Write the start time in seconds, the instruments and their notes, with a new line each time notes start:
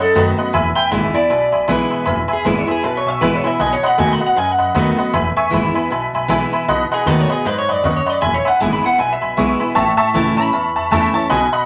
Already playing: steel-string acoustic guitar F#2
0.00 upright bass F#2, clean electric guitar A4
0.15 upright bass F#2, steel-string acoustic guitar D#3 A3 B3 F#4, honky-tonk piano D#5 F#5 B5
0.37 steel-string acoustic guitar B3 F#4, honky-tonk piano D#5 F#5 B5
0.53 upright bass E1, steel-string acoustic guitar E2, honky-tonk piano E5 G#5 B5
0.75 honky-tonk piano E5 G#5 B5, clean electric guitar G5, muted upright bass stroke
0.91 upright bass G#1, steel-string acoustic guitar E3 G#3 B3 E4, honky-tonk piano E5 G#5 B5, clean electric guitar E5
1.14 steel-string acoustic guitar B3 E4, clean electric guitar D5, honky-tonk piano E5 G#5 B5, muted upright bass stroke
1.30 upright bass B1, steel-string acoustic guitar B2, honky-tonk piano E5 G#5 B5
1.52 upright bass B1, honky-tonk piano E5 G#5 B5
1.68 upright bass B1, steel-string acoustic guitar E3 G#3 B3 E4, clean electric guitar B4, honky-tonk piano E5 G#5 B5
1.90 honky-tonk piano E5 G#5 B5, muted upright bass stroke
2.05 upright bass E1, steel-string acoustic guitar E2, honky-tonk piano E5 G#5 B5
2.28 honky-tonk piano E5 G#5 B5, muted upright bass stroke
2.33 clean electric guitar G#4
2.45 upright bass G#1, steel-string acoustic guitar E3 G#3 B3 E4, clean electric guitar B4, honky-tonk piano E5 G#5 B5
2.58 clean electric guitar C#5
2.67 steel-string acoustic guitar B3 E4, honky-tonk piano E5 G#5 B5, muted upright bass stroke
2.71 clean electric guitar G#4
2.83 upright bass B1, steel-string acoustic guitar B2, clean electric guitar B4, honky-tonk piano E5 G#5 B5
2.97 clean electric guitar C#5
3.05 upright bass B1, honky-tonk piano E5 G#5 C#6, clean electric guitar E5
3.21 upright bass A1, steel-string acoustic guitar E3 G#3 B3 E4, clean electric guitar B4, honky-tonk piano E5 G#5 B5
3.35 clean electric guitar C#5
3.44 steel-string acoustic guitar B3 E4, honky-tonk piano E5 G#5 B5, clean electric guitar E5, muted upright bass stroke
3.60 upright bass B1, steel-string acoustic guitar B2, honky-tonk piano D#5 F#5 B5, clean electric guitar G#5
3.73 clean electric guitar C#5
3.82 honky-tonk piano D#5 F#5 B5, muted upright bass stroke
3.86 clean electric guitar F#5
3.98 upright bass D#2, steel-string acoustic guitar D#3 A3 B3 F#4, honky-tonk piano D#5 F#5 B5, clean electric guitar G#5
4.13 clean electric guitar B5
4.20 steel-string acoustic guitar B3 F#4, honky-tonk piano D#5 F#5 B5, muted upright bass stroke
4.27 clean electric guitar F#5
4.36 steel-string acoustic guitar F#2, upright bass F#2, honky-tonk piano D#5 F#5 B5, clean electric guitar G#5
4.52 clean electric guitar F#5
4.58 upright bass F#2, honky-tonk piano D#5 F#5 B5
4.75 upright bass D#2, steel-string acoustic guitar D#3 A3 B3 F#4, honky-tonk piano D#5 F#5 B5
4.97 steel-string acoustic guitar B3 F#4, honky-tonk piano D#5 F#5 B5
5.13 upright bass E1, steel-string acoustic guitar E2, honky-tonk piano E5 G#5 B5
5.37 honky-tonk piano E5 G#5 C#6, muted upright bass stroke
5.50 upright bass G#1, steel-string acoustic guitar E3 G#3 B3 E4, honky-tonk piano E5 G#5 B5
5.74 steel-string acoustic guitar B3 E4, honky-tonk piano E5 G#5 B5
5.90 upright bass B1, steel-string acoustic guitar B2, honky-tonk piano E5 G#5 B5
6.13 upright bass B1, honky-tonk piano E5 G#5 B5
6.28 upright bass B1, steel-string acoustic guitar E3 G#3 B3 E4, honky-tonk piano E5 G#5 B5
6.52 steel-string acoustic guitar B3 E4, honky-tonk piano E5 G#5 B5, muted upright bass stroke
6.68 upright bass B1, steel-string acoustic guitar B2, honky-tonk piano D#5 F#5 B5
6.90 clean electric guitar G#4, honky-tonk piano D#5 F#5 B5, muted upright bass stroke
7.06 upright bass D#2, steel-string acoustic guitar D#3 A3 B3 F#4, clean electric guitar B4, honky-tonk piano D#5 F#5 B5
7.20 clean electric guitar C#5
7.29 steel-string acoustic guitar B3 F#4, clean electric guitar G#4, honky-tonk piano D#5 F#5 B5
7.45 upright bass F#2, steel-string acoustic guitar G#2, clean electric guitar B4, honky-tonk piano D#5 F#5 B5
7.59 clean electric guitar C#5
7.68 upright bass F#2, clean electric guitar D5, honky-tonk piano D#5 F#5 B5
7.84 upright bass D#2, steel-string acoustic guitar F#2, clean electric guitar B4, honky-tonk piano D#5 F#5 C#6
7.97 clean electric guitar C#5
8.06 clean electric guitar D5, honky-tonk piano D#5 F#5 B5, muted upright bass stroke
8.21 upright bass E1, steel-string acoustic guitar E2, honky-tonk piano E5 G#5 B5, clean electric guitar G#5
8.34 clean electric guitar C#5
8.45 honky-tonk piano E5 G#5 B5, clean electric guitar F#5, muted upright bass stroke
8.60 upright bass G#1, steel-string acoustic guitar E3 G#3 B3 E4, honky-tonk piano E5 G#5 B5, clean electric guitar G#5
8.73 clean electric guitar B5
8.83 steel-string acoustic guitar B3 E4, honky-tonk piano E5 G#5 B5, clean electric guitar F#5, muted upright bass stroke
8.98 upright bass B1, steel-string acoustic guitar B2, honky-tonk piano E5 G#5 B5, clean electric guitar G#5
9.13 clean electric guitar E5
9.21 upright bass B1, honky-tonk piano E5 G#5 B5
9.37 upright bass B1, steel-string acoustic guitar E3 G#3 B3 E4, honky-tonk piano E5 G#5 C#6
9.60 steel-string acoustic guitar B3 E4, honky-tonk piano E5 G#5 B5, muted upright bass stroke
9.75 upright bass A1, steel-string acoustic guitar A2, honky-tonk piano E5 A5 C#6
9.97 honky-tonk piano E5 A5 C#6
10.13 upright bass C#2, steel-string acoustic guitar E3 A3 C#4 E4, honky-tonk piano E5 A5 C#6, clean electric guitar A5
10.36 steel-string acoustic guitar C#4 E4, honky-tonk piano E5 A5 C#6, clean electric guitar B5, muted upright bass stroke
10.53 steel-string acoustic guitar E2, upright bass E2, honky-tonk piano E5 A5 C#6
10.76 upright bass E2, honky-tonk piano E5 A5 C#6
10.91 upright bass E2, steel-string acoustic guitar E3 A3 C#4 E4, honky-tonk piano E5 A5 C#6
11.14 steel-string acoustic guitar C#4 E4, honky-tonk piano E5 A5 C#6, clean electric guitar A5, muted upright bass stroke
11.29 upright bass B1, steel-string acoustic guitar B2, honky-tonk piano D#5 F#5 B5, clean electric guitar G#5
11.53 honky-tonk piano D#5 F#5 B5, clean electric guitar B5